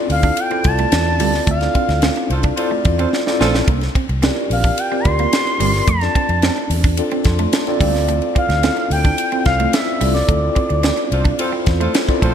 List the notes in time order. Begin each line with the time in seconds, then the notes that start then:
Already playing: C4 E4 F4 A4 D5
0.10 D2 F5, open hi-hat, ride
0.23 D4, kick, ride
0.37 G5, hi-hat pedal, ride
0.50 C4 E4 F4 A4 D5, ride
0.64 C2 C4 E4 F4 A4 D5 A5, muted clean electric guitar stroke, kick, ride
0.78 A3, ride
0.92 E2, snare, ride
1.19 D2 G3 C4 E4 F4 A4 D5, open hi-hat, ride
1.33 snare, ride
1.47 D2 A3, kick, hi-hat pedal, ride
1.51 F5
1.61 C4 D4 F4 A4 D5, snare, ride
1.75 C4, kick, ride
1.89 D2, muted clean electric guitar stroke, snare, ride
2.02 C4, snare, ride
2.16 muted clean electric guitar stroke, ride
2.30 C2 C4 F4 A4 C5, ride
2.43 D4, kick, ride
2.56 C4 E4 F4 A4 C5 D5, ride
2.71 A3
2.85 E2, muted clean electric guitar stroke, kick, ride
2.98 C4 F4 A4 C5, ride
3.13 snare
3.26 C4 E4 F4 A4 D5, snare
3.40 A#1 A3 C4 F4 A4 C5, snare
3.54 snare
3.68 C2 A#3, kick, ride
3.81 snare, ride
3.95 C4, kick, ride
4.09 C2, muted clean electric guitar stroke, ride
4.22 C4 E4 G4 A#4 D5, snare, ride
4.29 F4
4.36 muted clean electric guitar stroke
4.50 A#1 F5, open hi-hat, ride
4.64 D4, kick, ride
4.78 G5, hi-hat pedal, ride
4.91 C4 F4 G4 A#4 D5
5.00 B5
5.04 D2 C4 F4 G4 A#4 D5 C6, muted clean electric guitar stroke, kick, ride
5.19 A#3, ride
5.33 snare, ride
5.47 ride
5.60 G1 G3 C4 F4 G4 A#4 D5, open hi-hat, ride
5.74 snare, ride
5.87 F2 A3 A5, kick, hi-hat pedal, ride
6.01 C4 D4 F4 A4 D5, snare, ride
6.15 C4, kick, ride
6.29 F2, muted clean electric guitar stroke, ride
6.42 C4, snare, ride
6.58 muted clean electric guitar stroke
6.70 E2, open hi-hat, ride
6.84 D4, kick, ride
6.97 C4 D4 F4 A4 D5, hi-hat pedal, ride
7.11 C4, ride
7.24 F2 C6, muted clean electric guitar stroke, kick, snare, ride
7.39 A3, ride
7.53 A5, snare, ride
7.67 C4 D4 F4 A4 D5 G5, ride
7.80 D2 G3 C4 E4 F4 A4 D5 F5, kick, open hi-hat, ride
7.94 snare, ride
8.08 A3, hi-hat pedal, ride
8.22 ride
8.35 C4 F5, kick, ride
8.49 D2, muted clean electric guitar stroke, snare, ride
8.63 C4 E4 F4 A4 D5, snare, ride
8.77 muted clean electric guitar stroke, ride
8.90 D2 G5, open hi-hat, ride
9.05 D4, kick, ride
9.18 hi-hat pedal, ride
9.32 C4 E4 F4 A4 C5, ride
9.45 C2 C4 F4 A4 E5 F5, muted clean electric guitar stroke, kick, snare, ride
9.60 A3, ride
9.73 E5, snare, ride
10.01 C2 G3 C4 E4 F4 A4 D5, open hi-hat, ride
10.14 D5, snare, ride
10.28 D2 A3, kick, hi-hat pedal, ride
10.43 C4 E4 F4 A4 D5
10.55 C4, kick, ride
10.69 D2, muted clean electric guitar stroke, ride
10.83 C4, snare, ride
10.97 muted clean electric guitar stroke, ride
11.12 C2 C4 F4 A4 C5, ride
11.25 D4, kick, ride
11.39 C4 E4 F4 A4 C5, ride
11.53 C4
11.66 E2, muted clean electric guitar stroke, kick, snare, ride
11.81 A3 C4 F4 A4 C5, ride
11.94 snare, ride
12.08 C4 E4 F4 A4 D5, kick, ride
12.22 A#1 A3 C4 F4 A4 C5, kick, ride